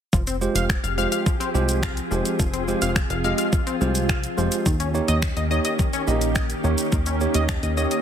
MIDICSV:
0, 0, Header, 1, 6, 480
1, 0, Start_track
1, 0, Key_signature, -4, "minor"
1, 0, Tempo, 566038
1, 111, Time_signature, 4, 2, 24, 8
1, 6799, End_track
2, 0, Start_track
2, 0, Title_t, "Synth arpeggio sound"
2, 0, Program_c, 0, 84
2, 110, Note_on_c, 0, 53, 87
2, 188, Note_off_c, 0, 53, 0
2, 230, Note_on_c, 0, 60, 81
2, 309, Note_off_c, 0, 60, 0
2, 471, Note_on_c, 0, 77, 105
2, 549, Note_off_c, 0, 77, 0
2, 709, Note_on_c, 0, 77, 84
2, 788, Note_off_c, 0, 77, 0
2, 829, Note_on_c, 0, 77, 96
2, 908, Note_off_c, 0, 77, 0
2, 949, Note_on_c, 0, 77, 84
2, 1027, Note_off_c, 0, 77, 0
2, 1069, Note_on_c, 0, 53, 72
2, 1148, Note_off_c, 0, 53, 0
2, 1189, Note_on_c, 0, 60, 96
2, 1268, Note_off_c, 0, 60, 0
2, 1549, Note_on_c, 0, 77, 100
2, 1627, Note_off_c, 0, 77, 0
2, 1789, Note_on_c, 0, 53, 73
2, 1868, Note_off_c, 0, 53, 0
2, 2030, Note_on_c, 0, 53, 84
2, 2108, Note_off_c, 0, 53, 0
2, 2149, Note_on_c, 0, 60, 83
2, 2228, Note_off_c, 0, 60, 0
2, 2390, Note_on_c, 0, 77, 101
2, 2468, Note_off_c, 0, 77, 0
2, 2630, Note_on_c, 0, 77, 82
2, 2708, Note_off_c, 0, 77, 0
2, 2750, Note_on_c, 0, 77, 95
2, 2828, Note_off_c, 0, 77, 0
2, 2870, Note_on_c, 0, 77, 82
2, 2948, Note_off_c, 0, 77, 0
2, 2989, Note_on_c, 0, 53, 75
2, 3068, Note_off_c, 0, 53, 0
2, 3110, Note_on_c, 0, 60, 94
2, 3188, Note_off_c, 0, 60, 0
2, 3470, Note_on_c, 0, 77, 97
2, 3548, Note_off_c, 0, 77, 0
2, 3710, Note_on_c, 0, 53, 72
2, 3788, Note_off_c, 0, 53, 0
2, 3950, Note_on_c, 0, 51, 88
2, 4028, Note_off_c, 0, 51, 0
2, 4069, Note_on_c, 0, 61, 81
2, 4148, Note_off_c, 0, 61, 0
2, 4310, Note_on_c, 0, 75, 106
2, 4388, Note_off_c, 0, 75, 0
2, 4551, Note_on_c, 0, 75, 85
2, 4629, Note_off_c, 0, 75, 0
2, 4671, Note_on_c, 0, 75, 100
2, 4749, Note_off_c, 0, 75, 0
2, 4791, Note_on_c, 0, 75, 82
2, 4869, Note_off_c, 0, 75, 0
2, 4911, Note_on_c, 0, 51, 77
2, 4989, Note_off_c, 0, 51, 0
2, 5032, Note_on_c, 0, 61, 98
2, 5110, Note_off_c, 0, 61, 0
2, 5391, Note_on_c, 0, 75, 94
2, 5469, Note_off_c, 0, 75, 0
2, 5631, Note_on_c, 0, 51, 77
2, 5709, Note_off_c, 0, 51, 0
2, 5872, Note_on_c, 0, 51, 87
2, 5949, Note_off_c, 0, 51, 0
2, 5992, Note_on_c, 0, 61, 81
2, 6069, Note_off_c, 0, 61, 0
2, 6232, Note_on_c, 0, 75, 103
2, 6310, Note_off_c, 0, 75, 0
2, 6472, Note_on_c, 0, 75, 86
2, 6550, Note_off_c, 0, 75, 0
2, 6591, Note_on_c, 0, 75, 98
2, 6669, Note_off_c, 0, 75, 0
2, 6711, Note_on_c, 0, 75, 81
2, 6789, Note_off_c, 0, 75, 0
2, 6799, End_track
3, 0, Start_track
3, 0, Title_t, "Tine electric piano"
3, 0, Program_c, 1, 4
3, 349, Note_on_c, 1, 56, 84
3, 350, Note_on_c, 1, 65, 76
3, 352, Note_on_c, 1, 67, 74
3, 354, Note_on_c, 1, 72, 88
3, 604, Note_off_c, 1, 56, 0
3, 605, Note_off_c, 1, 65, 0
3, 606, Note_off_c, 1, 67, 0
3, 606, Note_off_c, 1, 72, 0
3, 828, Note_on_c, 1, 56, 84
3, 830, Note_on_c, 1, 65, 73
3, 830, Note_on_c, 1, 67, 77
3, 832, Note_on_c, 1, 72, 92
3, 1084, Note_off_c, 1, 56, 0
3, 1084, Note_off_c, 1, 65, 0
3, 1085, Note_off_c, 1, 67, 0
3, 1086, Note_off_c, 1, 72, 0
3, 1309, Note_on_c, 1, 56, 95
3, 1310, Note_on_c, 1, 65, 84
3, 1311, Note_on_c, 1, 67, 90
3, 1312, Note_on_c, 1, 72, 104
3, 1564, Note_off_c, 1, 56, 0
3, 1565, Note_off_c, 1, 65, 0
3, 1565, Note_off_c, 1, 67, 0
3, 1566, Note_off_c, 1, 72, 0
3, 1789, Note_on_c, 1, 56, 87
3, 1791, Note_on_c, 1, 65, 80
3, 1792, Note_on_c, 1, 67, 82
3, 1794, Note_on_c, 1, 72, 93
3, 2044, Note_off_c, 1, 56, 0
3, 2045, Note_off_c, 1, 65, 0
3, 2046, Note_off_c, 1, 67, 0
3, 2047, Note_off_c, 1, 72, 0
3, 2269, Note_on_c, 1, 56, 89
3, 2270, Note_on_c, 1, 65, 80
3, 2272, Note_on_c, 1, 67, 81
3, 2273, Note_on_c, 1, 72, 94
3, 2524, Note_off_c, 1, 56, 0
3, 2525, Note_off_c, 1, 65, 0
3, 2526, Note_off_c, 1, 67, 0
3, 2526, Note_off_c, 1, 72, 0
3, 2750, Note_on_c, 1, 56, 86
3, 2751, Note_on_c, 1, 65, 75
3, 2753, Note_on_c, 1, 67, 75
3, 2753, Note_on_c, 1, 75, 94
3, 3005, Note_off_c, 1, 56, 0
3, 3005, Note_off_c, 1, 65, 0
3, 3006, Note_off_c, 1, 67, 0
3, 3006, Note_off_c, 1, 75, 0
3, 3228, Note_on_c, 1, 56, 85
3, 3230, Note_on_c, 1, 65, 73
3, 3232, Note_on_c, 1, 67, 76
3, 3233, Note_on_c, 1, 72, 93
3, 3483, Note_off_c, 1, 56, 0
3, 3485, Note_off_c, 1, 65, 0
3, 3486, Note_off_c, 1, 67, 0
3, 3486, Note_off_c, 1, 72, 0
3, 3709, Note_on_c, 1, 56, 89
3, 3710, Note_on_c, 1, 65, 77
3, 3712, Note_on_c, 1, 67, 77
3, 3713, Note_on_c, 1, 72, 97
3, 3950, Note_off_c, 1, 56, 0
3, 3950, Note_off_c, 1, 65, 0
3, 3952, Note_off_c, 1, 67, 0
3, 3952, Note_off_c, 1, 72, 0
3, 4190, Note_on_c, 1, 58, 82
3, 4191, Note_on_c, 1, 63, 77
3, 4193, Note_on_c, 1, 67, 78
3, 4194, Note_on_c, 1, 73, 91
3, 4445, Note_off_c, 1, 58, 0
3, 4445, Note_off_c, 1, 63, 0
3, 4446, Note_off_c, 1, 67, 0
3, 4447, Note_off_c, 1, 73, 0
3, 4670, Note_on_c, 1, 58, 85
3, 4672, Note_on_c, 1, 63, 76
3, 4674, Note_on_c, 1, 67, 79
3, 4675, Note_on_c, 1, 73, 89
3, 4925, Note_off_c, 1, 58, 0
3, 4926, Note_off_c, 1, 63, 0
3, 4927, Note_off_c, 1, 67, 0
3, 4927, Note_off_c, 1, 73, 0
3, 5150, Note_on_c, 1, 58, 92
3, 5151, Note_on_c, 1, 63, 85
3, 5153, Note_on_c, 1, 67, 87
3, 5154, Note_on_c, 1, 75, 101
3, 5405, Note_off_c, 1, 58, 0
3, 5405, Note_off_c, 1, 63, 0
3, 5406, Note_off_c, 1, 67, 0
3, 5407, Note_off_c, 1, 75, 0
3, 5630, Note_on_c, 1, 58, 90
3, 5632, Note_on_c, 1, 63, 76
3, 5634, Note_on_c, 1, 67, 77
3, 5634, Note_on_c, 1, 73, 97
3, 5885, Note_off_c, 1, 58, 0
3, 5886, Note_off_c, 1, 63, 0
3, 5887, Note_off_c, 1, 67, 0
3, 5887, Note_off_c, 1, 73, 0
3, 6111, Note_on_c, 1, 58, 87
3, 6112, Note_on_c, 1, 63, 82
3, 6114, Note_on_c, 1, 67, 79
3, 6115, Note_on_c, 1, 73, 94
3, 6365, Note_off_c, 1, 58, 0
3, 6366, Note_off_c, 1, 63, 0
3, 6366, Note_off_c, 1, 67, 0
3, 6367, Note_off_c, 1, 73, 0
3, 6590, Note_on_c, 1, 58, 85
3, 6591, Note_on_c, 1, 63, 75
3, 6593, Note_on_c, 1, 67, 76
3, 6594, Note_on_c, 1, 73, 92
3, 6799, Note_off_c, 1, 58, 0
3, 6799, Note_off_c, 1, 63, 0
3, 6799, Note_off_c, 1, 67, 0
3, 6799, Note_off_c, 1, 73, 0
3, 6799, End_track
4, 0, Start_track
4, 0, Title_t, "String machine"
4, 0, Program_c, 2, 50
4, 111, Note_on_c, 2, 60, 77
4, 112, Note_on_c, 2, 53, 80
4, 112, Note_on_c, 2, 67, 76
4, 112, Note_on_c, 2, 68, 90
4, 2012, Note_off_c, 2, 67, 0
4, 2033, Note_on_c, 2, 65, 75
4, 3917, Note_off_c, 2, 60, 0
4, 3917, Note_off_c, 2, 68, 0
4, 3918, Note_off_c, 2, 53, 0
4, 3933, Note_off_c, 2, 65, 0
4, 3952, Note_on_c, 2, 61, 73
4, 3954, Note_on_c, 2, 51, 81
4, 3954, Note_on_c, 2, 58, 76
4, 3954, Note_on_c, 2, 67, 91
4, 6799, Note_off_c, 2, 51, 0
4, 6799, Note_off_c, 2, 58, 0
4, 6799, Note_off_c, 2, 61, 0
4, 6799, Note_off_c, 2, 67, 0
4, 6799, End_track
5, 0, Start_track
5, 0, Title_t, "Analog synth bass"
5, 0, Program_c, 3, 38
5, 111, Note_on_c, 3, 29, 100
5, 405, Note_off_c, 3, 29, 0
5, 470, Note_on_c, 3, 29, 85
5, 666, Note_off_c, 3, 29, 0
5, 710, Note_on_c, 3, 29, 91
5, 906, Note_off_c, 3, 29, 0
5, 1310, Note_on_c, 3, 36, 103
5, 1702, Note_off_c, 3, 36, 0
5, 1791, Note_on_c, 3, 29, 97
5, 1889, Note_off_c, 3, 29, 0
5, 2031, Note_on_c, 3, 29, 95
5, 2325, Note_off_c, 3, 29, 0
5, 2390, Note_on_c, 3, 29, 83
5, 2586, Note_off_c, 3, 29, 0
5, 2630, Note_on_c, 3, 29, 92
5, 2826, Note_off_c, 3, 29, 0
5, 3230, Note_on_c, 3, 36, 103
5, 3622, Note_off_c, 3, 36, 0
5, 3710, Note_on_c, 3, 29, 97
5, 3808, Note_off_c, 3, 29, 0
5, 3951, Note_on_c, 3, 39, 101
5, 4245, Note_off_c, 3, 39, 0
5, 4312, Note_on_c, 3, 39, 85
5, 4507, Note_off_c, 3, 39, 0
5, 4552, Note_on_c, 3, 39, 90
5, 4747, Note_off_c, 3, 39, 0
5, 5152, Note_on_c, 3, 34, 101
5, 5543, Note_off_c, 3, 34, 0
5, 5631, Note_on_c, 3, 39, 101
5, 5729, Note_off_c, 3, 39, 0
5, 5871, Note_on_c, 3, 39, 100
5, 6165, Note_off_c, 3, 39, 0
5, 6231, Note_on_c, 3, 39, 82
5, 6427, Note_off_c, 3, 39, 0
5, 6472, Note_on_c, 3, 39, 89
5, 6667, Note_off_c, 3, 39, 0
5, 6799, End_track
6, 0, Start_track
6, 0, Title_t, "Drums"
6, 111, Note_on_c, 9, 36, 108
6, 111, Note_on_c, 9, 82, 80
6, 195, Note_off_c, 9, 36, 0
6, 196, Note_off_c, 9, 82, 0
6, 230, Note_on_c, 9, 42, 55
6, 230, Note_on_c, 9, 82, 57
6, 315, Note_off_c, 9, 42, 0
6, 315, Note_off_c, 9, 82, 0
6, 352, Note_on_c, 9, 82, 50
6, 437, Note_off_c, 9, 82, 0
6, 471, Note_on_c, 9, 42, 76
6, 471, Note_on_c, 9, 82, 76
6, 556, Note_off_c, 9, 42, 0
6, 556, Note_off_c, 9, 82, 0
6, 589, Note_on_c, 9, 36, 120
6, 592, Note_on_c, 9, 26, 118
6, 593, Note_on_c, 9, 82, 84
6, 674, Note_off_c, 9, 36, 0
6, 677, Note_off_c, 9, 26, 0
6, 678, Note_off_c, 9, 82, 0
6, 713, Note_on_c, 9, 42, 55
6, 713, Note_on_c, 9, 82, 59
6, 798, Note_off_c, 9, 42, 0
6, 798, Note_off_c, 9, 82, 0
6, 833, Note_on_c, 9, 82, 44
6, 918, Note_off_c, 9, 82, 0
6, 950, Note_on_c, 9, 42, 73
6, 950, Note_on_c, 9, 82, 71
6, 1035, Note_off_c, 9, 42, 0
6, 1035, Note_off_c, 9, 82, 0
6, 1072, Note_on_c, 9, 36, 112
6, 1073, Note_on_c, 9, 82, 80
6, 1156, Note_off_c, 9, 36, 0
6, 1158, Note_off_c, 9, 82, 0
6, 1193, Note_on_c, 9, 42, 49
6, 1193, Note_on_c, 9, 82, 46
6, 1278, Note_off_c, 9, 42, 0
6, 1278, Note_off_c, 9, 82, 0
6, 1313, Note_on_c, 9, 82, 51
6, 1398, Note_off_c, 9, 82, 0
6, 1431, Note_on_c, 9, 42, 67
6, 1431, Note_on_c, 9, 82, 68
6, 1516, Note_off_c, 9, 42, 0
6, 1516, Note_off_c, 9, 82, 0
6, 1550, Note_on_c, 9, 36, 105
6, 1552, Note_on_c, 9, 82, 76
6, 1554, Note_on_c, 9, 26, 121
6, 1635, Note_off_c, 9, 36, 0
6, 1637, Note_off_c, 9, 82, 0
6, 1639, Note_off_c, 9, 26, 0
6, 1671, Note_on_c, 9, 42, 59
6, 1671, Note_on_c, 9, 82, 58
6, 1756, Note_off_c, 9, 42, 0
6, 1756, Note_off_c, 9, 82, 0
6, 1792, Note_on_c, 9, 82, 45
6, 1877, Note_off_c, 9, 82, 0
6, 1912, Note_on_c, 9, 42, 79
6, 1912, Note_on_c, 9, 82, 82
6, 1997, Note_off_c, 9, 42, 0
6, 1997, Note_off_c, 9, 82, 0
6, 2031, Note_on_c, 9, 36, 103
6, 2031, Note_on_c, 9, 82, 78
6, 2116, Note_off_c, 9, 36, 0
6, 2116, Note_off_c, 9, 82, 0
6, 2150, Note_on_c, 9, 42, 56
6, 2150, Note_on_c, 9, 82, 53
6, 2235, Note_off_c, 9, 42, 0
6, 2235, Note_off_c, 9, 82, 0
6, 2272, Note_on_c, 9, 82, 51
6, 2357, Note_off_c, 9, 82, 0
6, 2390, Note_on_c, 9, 42, 72
6, 2390, Note_on_c, 9, 82, 76
6, 2475, Note_off_c, 9, 42, 0
6, 2475, Note_off_c, 9, 82, 0
6, 2509, Note_on_c, 9, 36, 120
6, 2510, Note_on_c, 9, 26, 116
6, 2511, Note_on_c, 9, 82, 85
6, 2594, Note_off_c, 9, 36, 0
6, 2595, Note_off_c, 9, 26, 0
6, 2596, Note_off_c, 9, 82, 0
6, 2630, Note_on_c, 9, 42, 55
6, 2630, Note_on_c, 9, 82, 58
6, 2715, Note_off_c, 9, 42, 0
6, 2715, Note_off_c, 9, 82, 0
6, 2750, Note_on_c, 9, 82, 43
6, 2835, Note_off_c, 9, 82, 0
6, 2868, Note_on_c, 9, 42, 74
6, 2868, Note_on_c, 9, 82, 74
6, 2953, Note_off_c, 9, 42, 0
6, 2953, Note_off_c, 9, 82, 0
6, 2990, Note_on_c, 9, 82, 84
6, 2991, Note_on_c, 9, 36, 111
6, 3075, Note_off_c, 9, 82, 0
6, 3076, Note_off_c, 9, 36, 0
6, 3112, Note_on_c, 9, 42, 46
6, 3112, Note_on_c, 9, 82, 48
6, 3196, Note_off_c, 9, 42, 0
6, 3196, Note_off_c, 9, 82, 0
6, 3231, Note_on_c, 9, 82, 51
6, 3316, Note_off_c, 9, 82, 0
6, 3350, Note_on_c, 9, 42, 69
6, 3350, Note_on_c, 9, 82, 71
6, 3435, Note_off_c, 9, 42, 0
6, 3435, Note_off_c, 9, 82, 0
6, 3470, Note_on_c, 9, 36, 102
6, 3471, Note_on_c, 9, 82, 77
6, 3472, Note_on_c, 9, 26, 114
6, 3554, Note_off_c, 9, 36, 0
6, 3555, Note_off_c, 9, 82, 0
6, 3557, Note_off_c, 9, 26, 0
6, 3592, Note_on_c, 9, 42, 57
6, 3592, Note_on_c, 9, 82, 54
6, 3676, Note_off_c, 9, 42, 0
6, 3676, Note_off_c, 9, 82, 0
6, 3713, Note_on_c, 9, 82, 47
6, 3798, Note_off_c, 9, 82, 0
6, 3832, Note_on_c, 9, 42, 82
6, 3832, Note_on_c, 9, 82, 86
6, 3916, Note_off_c, 9, 42, 0
6, 3916, Note_off_c, 9, 82, 0
6, 3951, Note_on_c, 9, 36, 109
6, 3951, Note_on_c, 9, 82, 78
6, 4036, Note_off_c, 9, 36, 0
6, 4036, Note_off_c, 9, 82, 0
6, 4071, Note_on_c, 9, 42, 54
6, 4071, Note_on_c, 9, 82, 54
6, 4156, Note_off_c, 9, 42, 0
6, 4156, Note_off_c, 9, 82, 0
6, 4194, Note_on_c, 9, 82, 50
6, 4278, Note_off_c, 9, 82, 0
6, 4311, Note_on_c, 9, 42, 74
6, 4311, Note_on_c, 9, 82, 76
6, 4396, Note_off_c, 9, 42, 0
6, 4396, Note_off_c, 9, 82, 0
6, 4429, Note_on_c, 9, 36, 124
6, 4430, Note_on_c, 9, 26, 117
6, 4431, Note_on_c, 9, 82, 81
6, 4514, Note_off_c, 9, 36, 0
6, 4515, Note_off_c, 9, 26, 0
6, 4516, Note_off_c, 9, 82, 0
6, 4551, Note_on_c, 9, 42, 57
6, 4551, Note_on_c, 9, 82, 53
6, 4636, Note_off_c, 9, 42, 0
6, 4636, Note_off_c, 9, 82, 0
6, 4672, Note_on_c, 9, 82, 45
6, 4756, Note_off_c, 9, 82, 0
6, 4789, Note_on_c, 9, 42, 73
6, 4789, Note_on_c, 9, 82, 70
6, 4874, Note_off_c, 9, 42, 0
6, 4874, Note_off_c, 9, 82, 0
6, 4911, Note_on_c, 9, 82, 83
6, 4912, Note_on_c, 9, 36, 106
6, 4996, Note_off_c, 9, 36, 0
6, 4996, Note_off_c, 9, 82, 0
6, 5032, Note_on_c, 9, 42, 49
6, 5032, Note_on_c, 9, 82, 46
6, 5117, Note_off_c, 9, 42, 0
6, 5117, Note_off_c, 9, 82, 0
6, 5151, Note_on_c, 9, 82, 48
6, 5236, Note_off_c, 9, 82, 0
6, 5270, Note_on_c, 9, 42, 72
6, 5270, Note_on_c, 9, 82, 67
6, 5354, Note_off_c, 9, 42, 0
6, 5354, Note_off_c, 9, 82, 0
6, 5389, Note_on_c, 9, 36, 108
6, 5389, Note_on_c, 9, 82, 76
6, 5391, Note_on_c, 9, 26, 121
6, 5474, Note_off_c, 9, 36, 0
6, 5474, Note_off_c, 9, 82, 0
6, 5476, Note_off_c, 9, 26, 0
6, 5509, Note_on_c, 9, 42, 56
6, 5509, Note_on_c, 9, 82, 56
6, 5594, Note_off_c, 9, 42, 0
6, 5594, Note_off_c, 9, 82, 0
6, 5631, Note_on_c, 9, 82, 45
6, 5716, Note_off_c, 9, 82, 0
6, 5749, Note_on_c, 9, 42, 84
6, 5749, Note_on_c, 9, 82, 81
6, 5834, Note_off_c, 9, 42, 0
6, 5834, Note_off_c, 9, 82, 0
6, 5869, Note_on_c, 9, 82, 77
6, 5871, Note_on_c, 9, 36, 104
6, 5954, Note_off_c, 9, 82, 0
6, 5956, Note_off_c, 9, 36, 0
6, 5988, Note_on_c, 9, 42, 54
6, 5988, Note_on_c, 9, 82, 55
6, 6073, Note_off_c, 9, 42, 0
6, 6073, Note_off_c, 9, 82, 0
6, 6110, Note_on_c, 9, 82, 52
6, 6194, Note_off_c, 9, 82, 0
6, 6228, Note_on_c, 9, 42, 78
6, 6228, Note_on_c, 9, 82, 76
6, 6313, Note_off_c, 9, 42, 0
6, 6313, Note_off_c, 9, 82, 0
6, 6349, Note_on_c, 9, 26, 113
6, 6349, Note_on_c, 9, 36, 120
6, 6351, Note_on_c, 9, 82, 82
6, 6434, Note_off_c, 9, 26, 0
6, 6434, Note_off_c, 9, 36, 0
6, 6435, Note_off_c, 9, 82, 0
6, 6471, Note_on_c, 9, 42, 57
6, 6471, Note_on_c, 9, 82, 55
6, 6556, Note_off_c, 9, 42, 0
6, 6556, Note_off_c, 9, 82, 0
6, 6592, Note_on_c, 9, 82, 45
6, 6677, Note_off_c, 9, 82, 0
6, 6708, Note_on_c, 9, 42, 71
6, 6708, Note_on_c, 9, 82, 71
6, 6793, Note_off_c, 9, 42, 0
6, 6793, Note_off_c, 9, 82, 0
6, 6799, End_track
0, 0, End_of_file